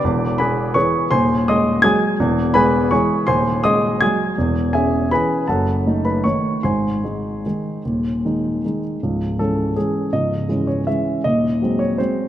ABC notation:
X:1
M:3/4
L:1/8
Q:1/4=162
K:C#m
V:1 name="Grand piano"
z2 [Bgb]2 [cc']2 | [^Bg^b]2 [dbd']2 [gd'g']2 | z2 [Bgb]2 [cgc']2 | [^Bg^b]2 [dbd']2 [gd'g']2 |
z2 [Geg]2 [Bgb]2 | [Afa]3 [Bb] [cc']2 | [^Bg^b]6- | [^Bg^b]4- [Bgb] z |
z2 A2 G2 | d3 c e2 | d3 c ^B2 |]
V:2 name="Grand piano" clef=bass
[E,,,E,,]2 [B,G]2 [E,B,G]2 | [D,,,D,,]2 [G,G]2 [F,G,G]2 | [E,,,E,,]2 [G,G]2 [E,G,G]2 | [D,,,D,,]2 [G,G]2 [F,G,G]2 |
[E,,,E,,]2 C2 [E,CG]2 | [F,,,F,,]2 [A,D]2 [D,A,D]2 | [G,,,G,,]2 [G,D]2 [D,G,D]2 | [D,,,D,,]2 [D,G,D]2 [D,G,D]2 |
[C,,,C,,]2 [E,G,C]2 [E,G,C]2 | [C,,,C,,]2 [E,G,C]2 [E,G,C]2 | [D,,,D,,]2 [F,G,^B,]2 [F,G,B,]2 |]